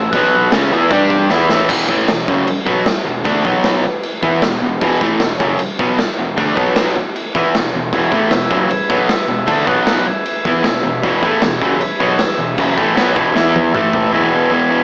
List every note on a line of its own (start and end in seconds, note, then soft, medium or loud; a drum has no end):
0.00 0.11 A1 medium
0.00 0.12 E4 medium
0.00 0.12 A4 medium
0.00 0.13 E5 medium
0.11 0.49 B1 medium
0.11 0.51 B2 loud
0.11 0.52 F#3 loud
0.11 0.51 F#4 medium
0.11 0.51 B4 medium
0.11 0.51 F#5 medium
0.11 kick loud
0.11 crash medium
0.15 0.52 B3 loud
0.52 0.70 C#2 medium
0.52 0.71 C#3 medium
0.52 0.71 G#3 medium
0.52 0.71 C#4 loud
0.52 0.90 E4 medium
0.52 0.91 A4 medium
0.52 0.91 E5 medium
0.52 snare loud
0.52 crash medium
0.71 0.89 E2 loud
0.71 0.90 E3 loud
0.71 0.91 B3 loud
0.71 0.91 E4 loud
0.90 1.27 G2 loud
0.90 1.29 G3 medium
0.90 1.29 D4 medium
0.90 1.30 D4 medium
0.90 1.29 G4 medium
0.90 1.30 G4 loud
0.90 1.30 D5 medium
0.90 kick loud
0.90 crash medium
1.10 kick medium
1.30 1.48 E2 medium
1.30 1.49 E3 loud
1.30 1.49 B3 loud
1.30 1.69 E4 medium
1.30 1.49 E4 medium
1.30 1.69 A4 medium
1.30 1.70 E5 medium
1.30 snare medium
1.49 1.68 A1 medium
1.49 1.69 A2 medium
1.49 1.69 E3 medium
1.49 1.69 A3 medium
1.49 snare medium
1.69 1.87 E1 medium
1.69 1.88 E2 medium
1.69 1.88 B2 loud
1.69 1.88 E3 loud
1.69 kick loud
1.69 crash loud
1.69 crash medium
1.89 2.07 A1 loud
1.89 2.08 A2 medium
1.89 2.08 E3 medium
1.89 2.08 A3 loud
1.89 kick loud
2.08 2.26 E1 medium
2.08 2.24 E2 medium
2.08 2.24 B2 medium
2.08 snare loud
2.08 crash medium
2.28 2.46 F#1 medium
2.28 2.47 F#2 loud
2.28 2.47 C#3 loud
2.28 2.47 F#3 loud
2.28 kick loud
2.47 muted distorted electric guitar stroke medium
2.47 muted fingered electric bass stroke soft
2.47 crash medium
2.65 2.84 B1 loud
2.65 2.85 B2 medium
2.65 2.85 F#3 loud
2.65 2.86 B3 loud
2.65 kick loud
2.85 muted distorted electric guitar stroke medium
2.85 muted fingered electric bass stroke soft
2.85 snare loud
2.85 crash medium
3.05 3.24 E1 medium
3.05 3.21 E2 medium
3.05 3.21 B2 medium
3.24 3.43 D2 medium
3.24 3.44 D3 loud
3.24 3.44 A3 loud
3.24 3.44 D4 loud
3.24 kick loud
3.24 crash medium
3.45 3.81 B1 medium
3.45 3.83 B2 medium
3.45 3.84 F#3 loud
3.45 3.84 B3 loud
3.45 kick medium
3.64 snare loud
3.64 crash medium
3.84 muted fingered electric bass stroke soft
3.84 muted distorted electric guitar stroke medium
4.03 crash medium
4.22 4.41 E2 medium
4.22 4.42 E3 loud
4.22 4.42 B3 medium
4.22 4.42 E4 loud
4.22 kick loud
4.42 4.60 E1 medium
4.42 4.58 E2 medium
4.42 4.58 B2 medium
4.42 snare loud
4.42 crash soft
4.62 4.80 E1 medium
4.62 4.77 E2 medium
4.62 4.78 B2 medium
4.81 5.00 E1 loud
4.81 5.00 E2 loud
4.81 5.01 B2 loud
4.81 5.01 E3 loud
4.81 kick loud
4.81 crash medium
5.01 5.19 A1 medium
5.01 5.20 A2 medium
5.01 5.21 E3 loud
5.01 5.21 A3 loud
5.01 kick loud
5.20 5.38 E1 medium
5.20 5.37 E2 medium
5.20 5.37 B2 medium
5.20 snare loud
5.20 crash medium
5.39 5.58 F#1 loud
5.39 5.59 F#2 medium
5.39 5.59 C#3 loud
5.39 5.60 F#3 loud
5.39 kick loud
5.59 muted distorted electric guitar stroke medium
5.59 muted fingered electric bass stroke soft
5.59 crash medium
5.79 5.97 B1 medium
5.79 5.98 B2 medium
5.79 5.98 F#3 medium
5.79 5.98 B3 loud
5.79 kick loud
5.99 muted distorted electric guitar stroke medium
5.99 muted fingered electric bass stroke soft
5.99 snare medium
5.99 crash medium
6.18 6.37 E1 medium
6.18 6.34 E2 medium
6.18 6.34 B2 medium
6.37 6.56 D2 medium
6.37 6.56 D3 medium
6.37 6.55 A3 loud
6.37 6.57 D4 loud
6.37 kick loud
6.37 crash medium
6.56 6.93 B1 medium
6.56 6.95 B2 medium
6.56 6.95 F#3 loud
6.56 6.95 B3 medium
6.56 kick loud
6.76 snare loud
6.76 crash medium
6.96 muted distorted electric guitar stroke medium
6.96 muted fingered electric bass stroke soft
7.16 crash medium
7.35 7.53 E2 medium
7.35 7.54 E3 loud
7.35 7.54 B3 medium
7.35 7.54 E4 medium
7.35 kick loud
7.55 7.72 E1 medium
7.55 7.70 E2 medium
7.55 7.71 B2 medium
7.55 snare loud
7.55 crash soft
7.73 7.91 E1 medium
7.73 7.89 E2 medium
7.73 7.90 B2 medium
7.93 8.11 E1 medium
7.93 8.12 E2 medium
7.93 8.11 B2 loud
7.93 8.11 E3 loud
7.93 9.64 G#4 medium
7.93 9.65 B4 medium
7.93 9.65 E5 medium
7.93 kick loud
7.93 crash medium
8.12 8.30 A1 medium
8.12 8.31 A2 medium
8.12 8.31 E3 loud
8.12 8.32 A3 medium
8.12 kick loud
8.31 8.50 E1 medium
8.31 8.48 E2 medium
8.31 8.47 B2 medium
8.31 snare loud
8.31 crash medium
8.50 8.69 F#1 medium
8.50 8.69 F#2 loud
8.50 8.69 C#3 loud
8.50 8.70 F#3 medium
8.50 kick loud
8.69 muted distorted electric guitar stroke medium
8.69 muted fingered electric bass stroke soft
8.69 crash medium
8.89 9.08 B1 medium
8.89 9.08 B2 medium
8.89 9.09 F#3 loud
8.89 9.09 B3 loud
8.89 kick loud
9.08 muted distorted electric guitar stroke medium
9.08 muted fingered electric bass stroke soft
9.08 snare loud
9.08 crash medium
9.28 9.47 E1 medium
9.28 9.44 E2 medium
9.28 9.44 B2 medium
9.46 9.66 D2 medium
9.46 9.65 D3 loud
9.46 9.67 A3 loud
9.46 9.67 D4 loud
9.46 kick loud
9.46 crash medium
9.66 10.04 B1 medium
9.66 10.05 B2 loud
9.66 10.06 F#3 loud
9.66 10.06 B3 loud
9.66 10.07 F#4 medium
9.66 10.07 B4 medium
9.66 10.07 F#5 medium
9.66 kick medium
9.87 snare loud
9.87 crash medium
10.06 13.13 G#4 medium
10.06 13.13 B4 medium
10.06 muted distorted electric guitar stroke medium
10.06 muted fingered electric bass stroke soft
10.10 13.14 E5 medium
10.25 crash medium
10.45 10.63 E2 medium
10.45 10.63 E3 medium
10.45 10.65 B3 loud
10.45 10.65 E4 loud
10.45 kick loud
10.63 10.83 E1 medium
10.63 10.79 E2 medium
10.63 10.80 B2 medium
10.63 snare loud
10.63 crash soft
10.83 11.02 E1 medium
10.83 10.99 E2 medium
10.83 10.99 B2 medium
11.02 11.22 E1 loud
11.02 11.22 E2 loud
11.02 11.22 B2 loud
11.02 11.22 E3 loud
11.02 kick loud
11.02 crash medium
11.23 11.41 A1 medium
11.23 11.42 A2 loud
11.23 11.42 E3 loud
11.23 11.42 A3 loud
11.23 kick loud
11.42 11.60 E1 medium
11.42 11.58 E2 medium
11.42 11.58 B2 medium
11.42 snare loud
11.42 crash medium
11.62 11.80 F#1 loud
11.62 11.80 F#2 loud
11.62 11.81 C#3 loud
11.62 11.81 F#3 loud
11.62 kick loud
11.80 muted fingered electric bass stroke soft
11.80 muted distorted electric guitar stroke medium
11.80 crash medium
11.99 12.18 B1 medium
11.99 12.19 B2 loud
11.99 12.19 F#3 loud
11.99 12.19 B3 loud
11.99 kick loud
12.19 muted fingered electric bass stroke soft
12.19 muted distorted electric guitar stroke medium
12.19 snare loud
12.19 crash medium
12.37 12.56 E1 medium
12.37 12.54 E2 medium
12.37 12.55 B2 medium
12.58 12.76 F#1 medium
12.58 12.77 F#2 loud
12.58 12.76 C#3 loud
12.58 12.76 F#3 medium
12.58 kick loud
12.58 crash medium
12.76 12.96 A1 medium
12.76 12.95 A2 medium
12.76 12.96 E3 loud
12.76 12.96 A3 loud
12.76 kick loud
12.96 13.15 B1 medium
12.96 13.15 B2 medium
12.96 13.15 F#3 medium
12.96 13.16 B3 loud
12.96 snare loud
12.96 crash medium
13.15 13.33 E1 medium
13.15 13.34 E2 medium
13.15 13.34 B2 loud
13.15 13.33 E3 loud
13.15 13.74 G#4 medium
13.15 13.74 B4 medium
13.15 13.72 E5 medium
13.15 kick loud
13.34 13.71 E2 medium
13.34 13.73 E3 medium
13.34 13.74 B3 loud
13.34 13.74 E4 loud
13.34 snare medium
13.56 high tom medium
13.72 14.10 A1 medium
13.72 14.12 A2 medium
13.72 14.13 E3 loud
13.72 14.13 A3 loud
13.72 14.12 E4 medium
13.72 14.12 A4 medium
13.72 14.12 E5 medium
13.72 mid tom medium
13.93 floor tom medium
14.12 14.50 E2 loud
14.12 14.34 B2 loud
14.12 14.32 E3 loud
14.12 14.84 G#4 medium
14.12 14.84 B4 medium
14.12 14.84 E5 loud
14.32 14.51 B2 medium
14.32 14.53 E3 medium
14.51 14.84 E2 medium
14.51 14.72 B2 medium
14.51 14.70 E3 medium
14.71 14.84 B2 medium
14.71 14.84 E3 medium